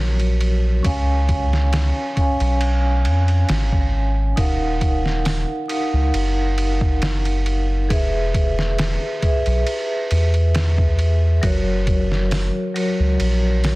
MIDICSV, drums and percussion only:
0, 0, Header, 1, 2, 480
1, 0, Start_track
1, 0, Key_signature, -6, "minor"
1, 0, Tempo, 882353
1, 460, Time_signature, 4, 2, 24, 8
1, 7482, End_track
2, 0, Start_track
2, 0, Title_t, "Drums"
2, 106, Note_on_c, 9, 51, 38
2, 161, Note_off_c, 9, 51, 0
2, 221, Note_on_c, 9, 51, 62
2, 275, Note_off_c, 9, 51, 0
2, 459, Note_on_c, 9, 36, 102
2, 459, Note_on_c, 9, 51, 79
2, 514, Note_off_c, 9, 36, 0
2, 514, Note_off_c, 9, 51, 0
2, 700, Note_on_c, 9, 36, 77
2, 700, Note_on_c, 9, 51, 59
2, 754, Note_off_c, 9, 36, 0
2, 754, Note_off_c, 9, 51, 0
2, 834, Note_on_c, 9, 38, 46
2, 888, Note_off_c, 9, 38, 0
2, 939, Note_on_c, 9, 51, 76
2, 944, Note_on_c, 9, 38, 100
2, 994, Note_off_c, 9, 51, 0
2, 999, Note_off_c, 9, 38, 0
2, 1179, Note_on_c, 9, 51, 53
2, 1180, Note_on_c, 9, 36, 79
2, 1234, Note_off_c, 9, 36, 0
2, 1234, Note_off_c, 9, 51, 0
2, 1307, Note_on_c, 9, 51, 39
2, 1361, Note_off_c, 9, 51, 0
2, 1418, Note_on_c, 9, 51, 76
2, 1472, Note_off_c, 9, 51, 0
2, 1659, Note_on_c, 9, 51, 63
2, 1713, Note_off_c, 9, 51, 0
2, 1785, Note_on_c, 9, 51, 39
2, 1839, Note_off_c, 9, 51, 0
2, 1897, Note_on_c, 9, 51, 79
2, 1902, Note_on_c, 9, 38, 101
2, 1951, Note_off_c, 9, 51, 0
2, 1956, Note_off_c, 9, 38, 0
2, 2025, Note_on_c, 9, 36, 84
2, 2080, Note_off_c, 9, 36, 0
2, 2378, Note_on_c, 9, 51, 80
2, 2379, Note_on_c, 9, 36, 100
2, 2432, Note_off_c, 9, 51, 0
2, 2433, Note_off_c, 9, 36, 0
2, 2618, Note_on_c, 9, 36, 77
2, 2618, Note_on_c, 9, 51, 57
2, 2672, Note_off_c, 9, 51, 0
2, 2673, Note_off_c, 9, 36, 0
2, 2751, Note_on_c, 9, 38, 39
2, 2805, Note_off_c, 9, 38, 0
2, 2858, Note_on_c, 9, 46, 70
2, 2863, Note_on_c, 9, 38, 102
2, 2912, Note_off_c, 9, 46, 0
2, 2917, Note_off_c, 9, 38, 0
2, 3098, Note_on_c, 9, 51, 59
2, 3152, Note_off_c, 9, 51, 0
2, 3339, Note_on_c, 9, 51, 77
2, 3394, Note_off_c, 9, 51, 0
2, 3578, Note_on_c, 9, 51, 66
2, 3633, Note_off_c, 9, 51, 0
2, 3705, Note_on_c, 9, 36, 86
2, 3759, Note_off_c, 9, 36, 0
2, 3818, Note_on_c, 9, 51, 75
2, 3823, Note_on_c, 9, 38, 104
2, 3872, Note_off_c, 9, 51, 0
2, 3877, Note_off_c, 9, 38, 0
2, 3946, Note_on_c, 9, 51, 42
2, 4000, Note_off_c, 9, 51, 0
2, 4058, Note_on_c, 9, 51, 58
2, 4113, Note_off_c, 9, 51, 0
2, 4299, Note_on_c, 9, 36, 101
2, 4299, Note_on_c, 9, 51, 80
2, 4353, Note_off_c, 9, 36, 0
2, 4353, Note_off_c, 9, 51, 0
2, 4539, Note_on_c, 9, 36, 83
2, 4540, Note_on_c, 9, 51, 62
2, 4593, Note_off_c, 9, 36, 0
2, 4594, Note_off_c, 9, 51, 0
2, 4672, Note_on_c, 9, 38, 47
2, 4726, Note_off_c, 9, 38, 0
2, 4779, Note_on_c, 9, 51, 78
2, 4784, Note_on_c, 9, 38, 110
2, 4834, Note_off_c, 9, 51, 0
2, 4838, Note_off_c, 9, 38, 0
2, 5018, Note_on_c, 9, 51, 60
2, 5019, Note_on_c, 9, 36, 79
2, 5073, Note_off_c, 9, 36, 0
2, 5073, Note_off_c, 9, 51, 0
2, 5145, Note_on_c, 9, 51, 37
2, 5199, Note_off_c, 9, 51, 0
2, 5258, Note_on_c, 9, 51, 73
2, 5312, Note_off_c, 9, 51, 0
2, 5498, Note_on_c, 9, 51, 63
2, 5552, Note_off_c, 9, 51, 0
2, 5625, Note_on_c, 9, 51, 39
2, 5679, Note_off_c, 9, 51, 0
2, 5737, Note_on_c, 9, 51, 77
2, 5742, Note_on_c, 9, 38, 104
2, 5791, Note_off_c, 9, 51, 0
2, 5796, Note_off_c, 9, 38, 0
2, 5865, Note_on_c, 9, 36, 88
2, 5919, Note_off_c, 9, 36, 0
2, 5977, Note_on_c, 9, 51, 58
2, 6031, Note_off_c, 9, 51, 0
2, 6216, Note_on_c, 9, 51, 84
2, 6218, Note_on_c, 9, 36, 103
2, 6271, Note_off_c, 9, 51, 0
2, 6272, Note_off_c, 9, 36, 0
2, 6457, Note_on_c, 9, 51, 60
2, 6458, Note_on_c, 9, 36, 83
2, 6511, Note_off_c, 9, 51, 0
2, 6513, Note_off_c, 9, 36, 0
2, 6591, Note_on_c, 9, 38, 39
2, 6646, Note_off_c, 9, 38, 0
2, 6698, Note_on_c, 9, 46, 72
2, 6703, Note_on_c, 9, 38, 97
2, 6753, Note_off_c, 9, 46, 0
2, 6758, Note_off_c, 9, 38, 0
2, 6940, Note_on_c, 9, 51, 57
2, 6995, Note_off_c, 9, 51, 0
2, 7179, Note_on_c, 9, 51, 76
2, 7234, Note_off_c, 9, 51, 0
2, 7418, Note_on_c, 9, 46, 62
2, 7423, Note_on_c, 9, 38, 90
2, 7473, Note_off_c, 9, 46, 0
2, 7478, Note_off_c, 9, 38, 0
2, 7482, End_track
0, 0, End_of_file